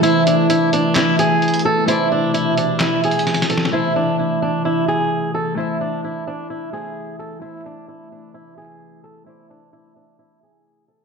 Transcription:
Already playing: C3 E3 A3 E4 A4
0.01 A3 E4 C5, closed hi-hat
0.06 E5
0.27 D4, closed hi-hat
0.50 E4, closed hi-hat
0.73 D4, closed hi-hat
0.95 E4, snare, clap, closed hi-hat
1.19 G#4, closed hi-hat
1.42 closed hi-hat
1.48 closed hi-hat
1.54 closed hi-hat
1.59 closed hi-hat
1.65 A4
1.86 B2 A3 E4 C5, closed hi-hat
1.91 D5
2.12 D4
2.34 E4, closed hi-hat
2.57 D4, closed hi-hat
2.80 E4, snare, clap, closed hi-hat
3.04 G#4, closed hi-hat
3.11 closed hi-hat
3.19 closed hi-hat
3.27 snare, closed hi-hat
3.34 snare, closed hi-hat
3.42 snare, closed hi-hat
3.50 A4, snare, closed hi-hat
3.58 snare
3.65 snare
3.70 A3 E4 C5
3.75 E5
3.96 D4
4.19 E4
4.42 D4
4.65 E4
4.88 G#4
5.34 A4
5.55 A3 E4 A4 C5
5.60 E5
5.81 D4
6.04 E4
6.27 D4
6.50 E4
6.72 A3 E4 G#4 C5 E5
7.19 A4
7.39 C3 E3 A3 E4 C5
7.45 E5
7.66 D4
7.88 E4
8.12 D4
8.34 E4
8.58 G#4
9.04 A4
9.24 A3 E4 C5
9.29 D5
9.50 D4
9.73 E4
9.96 D4
10.19 E4
10.43 G#4
10.88 A4

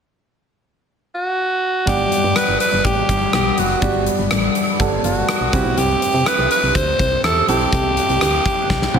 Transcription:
1.15 F#4
1.86 G1 G3 B3 D4 G4 F#5 B5 D6, kick, closed hi-hat
2.12 closed hi-hat
2.24 G2
2.36 B4, cross-stick, closed hi-hat
2.49 G1
2.60 B4, closed hi-hat
2.73 G1
2.85 A1 G4, kick, closed hi-hat
3.09 G1, kick, closed hi-hat
3.33 B1 G4, cross-stick, closed hi-hat
3.58 F#1 F#4, closed hi-hat
3.81 G1 G3 B3 D4 G4, kick, closed hi-hat
4.06 closed hi-hat
4.19 G1
4.31 A1, cross-stick, closed hi-hat
4.55 closed hi-hat
4.79 G1 G3 B3 D4 A4, kick, closed hi-hat
5.04 G1 F#4, closed hi-hat
5.28 cross-stick, closed hi-hat
5.41 B1
5.52 C2 G3 C4 E4 G4 E5 C6 E6, kick, closed hi-hat
5.65 B1
5.78 C2 G4, closed hi-hat
6.02 closed hi-hat
6.14 C3
6.26 B4, cross-stick, closed hi-hat
6.38 C2
6.51 B4, closed hi-hat
6.63 C2
6.75 D2 C5, kick, closed hi-hat
6.99 C2, kick, closed hi-hat
7.24 E2 A4, cross-stick, closed hi-hat
7.47 B1 G3 C4 E4 G4 A4 F#6, closed hi-hat
7.72 C2, kick, closed hi-hat
7.97 closed hi-hat
8.09 C2, closed hi-hat
8.21 D2, cross-stick, closed hi-hat
8.45 kick, closed hi-hat
8.70 C2, kick, snare
8.82 snare
8.94 C2 G3 C4 E4 F#5, high tom

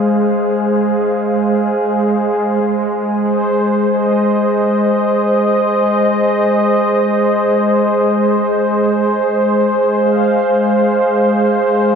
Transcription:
Already playing: G#3 G#4 C5 F5
2.60 G#3
2.93 G#4
3.21 C5
3.90 D#5
9.99 F5

